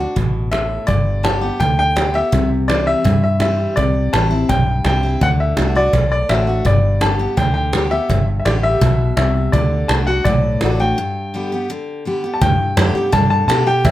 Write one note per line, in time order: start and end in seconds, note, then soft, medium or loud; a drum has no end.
0.00 0.17 D4 soft
0.00 0.15 F#4 soft
0.16 0.77 A1 medium
0.16 0.50 B2 medium
0.16 cajon bass loud
0.51 0.86 A2 medium
0.51 0.85 E5 medium
0.51 cajon slap medium
0.71 cajon slap soft
0.87 1.49 G1 medium
0.87 1.56 G2 medium
0.87 1.25 D5 medium
0.87 cajon bass medium
1.23 1.41 D3 soft
1.23 1.41 G3 medium
1.23 1.42 B3 medium
1.23 1.40 G4 medium
1.23 1.61 A5 medium
1.23 cajon slap loud
1.41 1.60 B3 soft
1.41 1.59 G4 medium
1.60 2.21 D2 medium
1.60 1.94 D3 medium
1.60 1.77 G5 loud
1.60 cajon bass loud
1.79 2.16 G5 loud
1.79 cajon slap soft
1.96 2.14 D3 medium
1.96 2.14 G3 medium
1.96 2.14 B3 medium
1.96 2.13 G4 medium
1.96 cajon slap loud
2.14 2.32 B3 soft
2.14 2.32 G4 medium
2.14 2.49 E5 loud
2.14 cajon slap soft
2.32 2.93 C2 medium
2.32 3.01 C3 medium
2.32 cajon bass loud
2.68 3.03 E3 medium
2.68 3.03 G3 medium
2.68 3.04 C4 medium
2.68 3.04 E4 medium
2.68 2.87 D5 medium
2.68 cajon slap loud
2.87 3.20 E5 loud
3.04 3.73 G2 medium
3.04 3.66 G2 medium
3.04 cajon bass loud
3.23 3.40 E5 medium
3.23 cajon slap soft
3.40 3.75 E3 medium
3.40 3.75 G3 medium
3.40 3.76 C4 medium
3.40 3.76 E4 medium
3.40 3.78 E5 medium
3.40 cajon slap loud
3.59 cajon slap soft
3.76 4.08 C2 medium
3.76 4.45 C3 medium
3.76 4.14 D5 medium
3.76 cajon bass medium
4.13 4.44 A1 medium
4.13 4.30 E3 medium
4.13 4.31 G3 medium
4.13 4.31 C4 medium
4.13 4.29 E4 medium
4.13 4.50 A5 medium
4.13 cajon slap loud
4.31 4.49 C4 soft
4.31 4.48 E4 medium
4.49 4.80 B1 medium
4.49 5.18 G2 loud
4.49 4.84 G5 medium
4.49 cajon bass loud
4.67 cajon slap soft
4.85 5.16 C2 medium
4.85 5.02 E3 medium
4.85 5.03 G3 medium
4.85 5.03 C4 medium
4.85 5.02 E4 medium
4.85 5.23 G5 medium
4.85 cajon slap medium
5.03 5.21 C4 soft
5.03 5.20 E4 soft
5.03 cajon slap soft
5.21 5.52 D2 medium
5.21 5.56 D3 medium
5.21 5.28 F#5 medium
5.21 cajon bass medium
5.40 5.77 E5 medium
5.57 5.88 C2 medium
5.57 5.74 D3 medium
5.57 5.75 A3 medium
5.57 5.75 D4 medium
5.57 5.74 F#4 medium
5.57 cajon slap loud
5.75 5.94 D4 soft
5.75 5.93 F#4 medium
5.75 6.10 D5 medium
5.93 6.24 B1 medium
5.93 6.62 A2 medium
5.93 cajon bass loud
6.11 6.30 D5 medium
6.11 cajon slap soft
6.29 6.60 A1 medium
6.29 6.47 D3 medium
6.29 6.47 A3 medium
6.29 6.47 D4 medium
6.29 6.46 F#4 medium
6.29 6.63 E5 medium
6.29 cajon slap loud
6.47 6.66 D4 soft
6.47 6.65 F#4 medium
6.47 cajon slap soft
6.65 7.26 G1 medium
6.65 7.33 G2 medium
6.65 7.03 D5 medium
6.65 cajon bass loud
7.01 7.18 D3 soft
7.01 7.19 G3 medium
7.01 7.19 B3 medium
7.01 7.18 G4 medium
7.01 7.35 A5 medium
7.01 cajon slap loud
7.19 7.37 B3 soft
7.19 7.37 G4 medium
7.37 7.98 D2 medium
7.37 7.71 D3 medium
7.37 7.52 G5 medium
7.37 cajon bass loud
7.54 7.92 G5 medium
7.54 cajon slap soft
7.73 7.90 D3 soft
7.73 7.91 G3 medium
7.73 7.91 B3 medium
7.73 7.90 G4 medium
7.73 cajon slap loud
7.91 8.09 B3 soft
7.91 8.08 G4 medium
7.91 8.25 E5 medium
7.91 cajon slap soft
8.10 8.40 G1 medium
8.10 8.78 G2 medium
8.10 cajon bass loud
8.40 8.45 E5 medium
8.45 8.76 A1 medium
8.45 8.79 D3 medium
8.45 8.80 G3 soft
8.45 8.80 B3 medium
8.45 8.81 G4 medium
8.45 8.50 D5 medium
8.45 cajon slap loud
8.63 9.15 E5 loud
8.81 9.12 B1 medium
8.81 9.16 B2 loud
8.81 cajon bass loud
8.99 cajon slap soft
9.17 9.48 C2 medium
9.17 9.51 C3 medium
9.17 9.54 E5 medium
9.17 cajon slap loud
9.36 cajon slap soft
9.52 9.84 D2 medium
9.52 9.88 D3 medium
9.52 9.90 D5 medium
9.52 cajon bass loud
9.88 10.20 C2 medium
9.88 10.06 D3 medium
9.88 10.07 A3 medium
9.88 10.07 D4 medium
9.88 10.06 F#4 medium
9.88 9.93 A5 medium
9.88 cajon slap loud
10.07 10.25 D4 soft
10.07 10.25 F#4 medium
10.07 10.25 F#5 medium
10.24 10.56 B1 medium
10.24 10.94 A2 medium
10.24 10.80 D5 medium
10.24 cajon bass loud
10.44 cajon slap soft
10.61 10.92 A1 medium
10.61 10.79 D3 medium
10.61 10.79 A3 medium
10.61 10.79 D4 medium
10.61 10.78 F#4 medium
10.61 cajon slap loud
10.80 10.98 D4 soft
10.80 10.97 F#4 medium
10.80 12.02 G5 medium
10.80 cajon slap soft
10.98 11.66 G2 medium
11.34 11.51 D3 medium
11.34 11.51 G3 medium
11.34 11.52 B3 medium
11.34 11.51 G4 medium
11.52 11.70 B3 soft
11.52 11.69 G4 medium
11.70 12.04 D3 medium
12.05 12.22 D3 soft
12.05 12.23 G3 soft
12.05 12.23 B3 medium
12.05 12.23 G4 medium
12.24 12.42 B3 soft
12.24 12.41 G4 medium
12.34 12.41 A5 medium
12.41 12.58 D2 medium
12.41 13.09 G2 medium
12.41 13.15 G5 medium
12.41 cajon bass loud
12.60 cajon slap soft
12.77 12.94 F#2 medium
12.77 12.94 D3 medium
12.77 12.95 A3 medium
12.77 12.95 B3 medium
12.77 12.94 G4 medium
12.77 cajon slap loud
12.95 13.13 B3 medium
12.95 13.12 G4 medium
12.95 muted fingered electric bass stroke soft
12.95 cajon slap soft
13.12 13.47 G2 medium
13.12 13.47 D3 loud
13.12 13.29 A5 loud
13.12 cajon bass loud
13.30 13.46 A5 medium
13.30 cajon slap soft
13.48 13.83 B2 medium
13.48 13.66 D3 medium
13.48 13.66 A3 medium
13.48 13.67 B3 loud
13.48 13.65 G4 medium
13.48 13.67 A5 loud
13.48 cajon slap loud
13.67 13.85 B3 soft
13.67 13.84 G4 medium
13.67 13.84 G5 loud
13.67 cajon slap soft
13.85 13.91 E2 medium
13.85 13.91 E5 medium
13.85 cajon bass loud